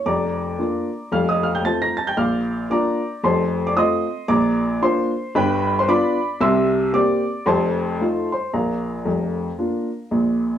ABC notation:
X:1
M:4/4
L:1/16
Q:"Swing" 1/4=113
K:Bb
V:1 name="Upright piano"
[dbd']8 [ff'] [ee'] [ff'] [gg'] [aa'] [bb'] [aa'] [gg'] | [fd'f']4 [dbd']4 [cac']3 [dd'] [ec'e']4 | [dbd']4 [cc']4 [=Bg=b]3 [cc'] [dbd']4 | [=ec'=e']4 [dd']4 [cac']6 [cc']2 |
[Bfb]12 z4 |]
V:2 name="Upright piano"
[F,,,F,,]4 [B,DF]4 [F,,,F,,]4 [A,CF]4 | [B,,,B,,]4 [B,DF]4 [F,,,F,,]4 [A,CF]4 | [B,,,B,,]4 [B,DF]4 [G,,,G,,]4 [=B,DF]4 | [C,,C,]4 [B,CG]4 [F,,,F,,]4 [A,EF]4 |
[B,,,B,,]4 [F,,,F,,]4 [B,DF]4 [B,,,B,,]4 |]